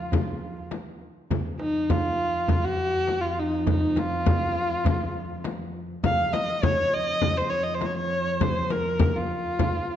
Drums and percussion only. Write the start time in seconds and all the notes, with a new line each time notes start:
0.12 tombak dum, frame drum
0.27 tombak ka
0.57 tombak ka
0.71 tombak tek, frame drum
1.01 tombak ka
1.31 tombak dum, frame drum
1.59 tombak tek
1.75 tombak ka
1.90 tombak dum, frame drum
2.19 tombak ka
2.48 tombak dum, frame drum
2.64 tombak ka
2.93 tombak ka
3.07 tombak tek, frame drum
3.22 tombak ka
3.67 tombak dum, frame drum
3.96 tombak tek, frame drum
4.12 tombak ka
4.26 frame drum, tombak dum
4.56 tombak ka
4.85 tombak dum, frame drum
5.00 tombak ka
5.29 tombak ka
5.44 tombak tek, frame drum
5.59 tombak ka
6.04 tombak dum, frame drum
6.33 tombak tek, frame drum
6.48 tombak ka
6.63 tombak dum, frame drum
6.93 tombak ka
7.22 frame drum, tombak dum
7.37 tombak ka
7.67 tombak ka
7.81 tombak tek, frame drum
7.96 tombak ka
8.41 tombak dum, frame drum
8.70 tombak tek, frame drum
8.85 tombak ka
8.99 frame drum, tombak dum
9.30 tombak ka
9.59 tombak dum, frame drum
9.73 tombak ka
9.88 tombak ka